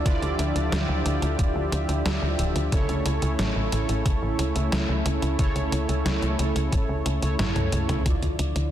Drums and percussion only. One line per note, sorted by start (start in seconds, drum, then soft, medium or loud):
0.06 kick loud
0.06 closed hi-hat medium
0.22 closed hi-hat soft
0.39 closed hi-hat medium
0.56 closed hi-hat soft
0.72 snare loud
0.72 closed hi-hat medium
1.06 closed hi-hat medium
1.22 closed hi-hat soft
1.39 kick loud
1.39 closed hi-hat medium
1.72 closed hi-hat medium
1.89 closed hi-hat soft
2.06 snare loud
2.06 closed hi-hat medium
2.39 closed hi-hat medium
2.56 closed hi-hat soft
2.72 kick loud
2.72 closed hi-hat medium
2.89 closed hi-hat soft
3.06 closed hi-hat medium
3.22 closed hi-hat soft
3.39 snare loud
3.39 closed hi-hat medium
3.72 closed hi-hat medium
3.89 closed hi-hat soft
4.06 kick loud
4.06 closed hi-hat medium
4.39 closed hi-hat medium
4.56 closed hi-hat medium
4.72 snare loud
4.72 closed hi-hat medium
5.06 closed hi-hat medium
5.22 closed hi-hat soft
5.39 kick loud
5.39 closed hi-hat medium
5.56 closed hi-hat soft
5.72 closed hi-hat medium
5.89 closed hi-hat medium
6.06 snare loud
6.06 closed hi-hat medium
6.22 closed hi-hat soft
6.39 closed hi-hat medium
6.56 closed hi-hat medium
6.72 kick loud
6.72 closed hi-hat medium
7.06 closed hi-hat medium
7.22 closed hi-hat medium
7.39 snare loud
7.39 closed hi-hat medium
7.39 high tom medium
7.56 closed hi-hat soft
7.56 high tom medium
7.72 closed hi-hat medium
7.89 closed hi-hat medium
7.89 mid tom medium
8.06 kick medium
8.06 closed hi-hat medium
8.06 mid tom soft
8.22 closed hi-hat soft
8.39 closed hi-hat medium
8.56 closed hi-hat medium